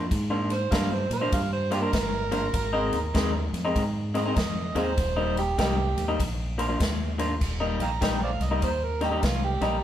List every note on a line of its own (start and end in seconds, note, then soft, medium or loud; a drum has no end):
0.11 0.68 G#2 medium
0.11 kick medium
0.11 snare soft
0.11 ride medium
0.30 0.54 F3 medium
0.30 0.54 A#3 medium
0.30 0.53 D4 medium
0.30 0.53 F4 medium
0.50 0.74 C5 loud
0.50 snare soft
0.50 ride medium
0.71 1.07 G2 medium
0.71 0.91 F3 medium
0.71 0.91 A#3 medium
0.71 0.91 D4 medium
0.71 0.90 F4 medium
0.71 0.95 F5 medium
0.71 kick medium
0.71 snare loud
0.71 ride medium
0.92 1.12 C5 medium
0.92 muted clean electric guitar stroke medium
1.10 1.30 A#2 medium
1.10 1.32 C5 loud
1.10 snare soft
1.10 ride medium
1.21 1.39 F3 medium
1.21 1.39 A#3 medium
1.21 1.39 D4 medium
1.21 1.38 F4 medium
1.32 1.89 G2 medium
1.32 1.52 F5 medium
1.32 kick medium
1.32 snare soft
1.32 ride medium
1.53 1.72 C5 medium
1.71 1.82 F3 medium
1.71 1.81 A#3 medium
1.71 1.81 D4 medium
1.71 1.80 F4 medium
1.71 1.79 F4 medium
1.71 1.81 G4 medium
1.71 3.51 A#4 loud
1.71 snare soft
1.71 ride medium
1.82 1.92 F3 medium
1.82 1.92 A#3 medium
1.82 1.93 D4 medium
1.82 1.93 F4 medium
1.93 2.50 G1 medium
1.93 muted clean electric guitar stroke soft
1.93 kick medium
1.93 snare loud
1.93 ride medium
2.31 2.46 F3 medium
2.31 2.46 A#3 medium
2.31 2.47 D4 medium
2.31 2.47 F4 medium
2.31 snare soft
2.31 ride medium
2.54 2.89 G#1 loud
2.54 kick medium
2.54 snare soft
2.54 ride medium
2.73 2.96 D#3 medium
2.73 2.96 G#3 medium
2.73 2.96 C4 medium
2.73 2.96 D#4 loud
2.93 3.13 D#2 medium
2.93 snare soft
2.93 ride medium
3.14 3.50 D#2 medium
3.14 3.34 D#3 medium
3.14 3.34 G#3 medium
3.14 3.34 C4 medium
3.14 3.33 D#4 medium
3.14 kick medium
3.14 snare loud
3.14 ride medium
3.34 muted clean electric guitar stroke medium
3.53 3.73 F2 medium
3.53 snare soft
3.53 ride medium
3.65 3.82 D#3 medium
3.65 3.82 G#3 medium
3.65 3.82 C4 medium
3.65 3.81 D#4 medium
3.75 4.32 G#2 medium
3.75 kick medium
3.75 snare soft
3.75 ride medium
4.14 4.25 D#3 medium
4.14 4.25 G#3 medium
4.14 4.25 C4 medium
4.14 4.24 D#4 medium
4.14 4.76 D#5 loud
4.14 snare soft
4.14 ride medium
4.26 4.35 D#3 medium
4.26 4.36 G#3 medium
4.26 4.36 C4 medium
4.26 4.36 D#4 medium
4.36 4.72 F2 medium
4.36 muted clean electric guitar stroke soft
4.36 kick medium
4.36 snare loud
4.36 ride medium
4.75 4.95 D#2 loud
4.75 4.90 D#3 medium
4.75 4.90 G#3 medium
4.75 4.90 C4 medium
4.75 4.90 D#4 medium
4.75 4.84 F4 medium
4.75 4.85 G#4 medium
4.75 5.36 C5 medium
4.75 snare soft
4.75 ride medium
4.97 5.54 D#1 loud
4.97 kick medium
4.97 snare soft
4.97 ride medium
5.16 5.40 D#3 medium
5.16 5.40 G3 medium
5.16 5.39 A#3 loud
5.16 5.39 D#4 medium
5.37 5.58 G4 loud
5.37 snare soft
5.37 ride medium
5.58 5.94 C2 medium
5.58 5.77 D#3 medium
5.58 5.78 G3 medium
5.58 5.77 A#3 medium
5.58 5.77 D#4 medium
5.58 6.17 G4 loud
5.58 kick medium
5.58 snare loud
5.58 ride medium
5.78 muted clean electric guitar stroke medium
5.97 6.17 D#2 medium
5.97 snare soft
5.97 ride medium
6.08 6.20 D#3 medium
6.08 6.19 G3 medium
6.08 6.19 A#3 medium
6.08 6.19 D#4 loud
6.19 6.76 A#1 medium
6.19 kick medium
6.19 snare soft
6.19 ride medium
6.58 6.68 F3 medium
6.58 6.68 A#3 medium
6.58 6.68 D4 medium
6.58 6.67 F4 medium
6.58 snare soft
6.58 ride medium
6.68 6.78 F3 medium
6.68 6.79 A#3 medium
6.68 6.79 D4 medium
6.68 6.79 F4 loud
6.80 7.37 D#2 medium
6.80 muted clean electric guitar stroke medium
6.80 kick medium
6.80 snare loud
6.80 ride medium
7.18 7.33 F3 medium
7.18 7.33 A#3 loud
7.18 7.33 D4 medium
7.18 7.33 F4 medium
7.18 snare soft
7.18 ride medium
7.41 7.76 D#1 medium
7.41 kick medium
7.41 snare soft
7.41 crash medium
7.60 7.83 D#3 medium
7.60 7.83 G3 medium
7.60 7.83 A#3 medium
7.60 7.83 D#4 medium
7.79 7.99 A#1 medium
7.79 7.91 F5 medium
7.79 7.90 G5 medium
7.79 8.04 A#5 medium
7.79 snare soft
7.79 ride medium
8.01 8.37 A#1 medium
8.01 8.20 D#3 medium
8.01 8.20 G3 medium
8.01 8.20 A#3 medium
8.01 8.19 D#4 loud
8.01 8.21 G5 medium
8.01 kick medium
8.01 snare loud
8.01 ride medium
8.20 8.31 C5 medium
8.20 8.31 D5 medium
8.20 8.45 F5 medium
8.20 muted clean electric guitar stroke soft
8.40 8.60 C2 medium
8.40 8.62 D#5 medium
8.40 snare soft
8.40 ride medium
8.51 8.68 D#3 medium
8.51 8.68 G3 medium
8.51 8.68 A#3 medium
8.51 8.68 D#4 medium
8.62 9.19 D#2 medium
8.62 8.85 C5 loud
8.62 kick medium
8.62 snare soft
8.62 ride medium
8.84 9.03 A#4 medium
9.01 9.11 D#3 medium
9.01 9.11 G3 medium
9.01 9.11 A#3 medium
9.01 9.10 D#4 medium
9.01 9.25 G4 medium
9.01 snare soft
9.01 ride medium
9.11 9.21 D#3 medium
9.11 9.22 G3 medium
9.11 9.22 A#3 medium
9.11 9.22 D#4 loud
9.22 9.58 C2 medium
9.22 9.43 F4 medium
9.22 muted clean electric guitar stroke soft
9.22 kick medium
9.22 snare loud
9.22 ride medium
9.44 9.84 G4 medium
9.61 9.81 A#1 medium
9.61 9.76 D#3 medium
9.61 9.76 G3 medium
9.61 9.76 A#3 medium
9.61 9.76 D#4 medium
9.61 snare soft
9.61 ride medium